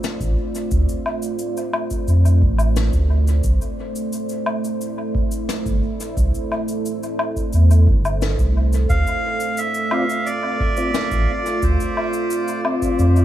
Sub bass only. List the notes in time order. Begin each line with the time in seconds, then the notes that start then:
0.20 A1
0.72 D2
2.08 F2
2.42 A1
2.93 D2
3.44 C2
5.66 G1
6.17 C2
7.54 E2
7.87 G1
8.39 C2
8.90 D2
11.11 A1
11.63 D2
12.99 F2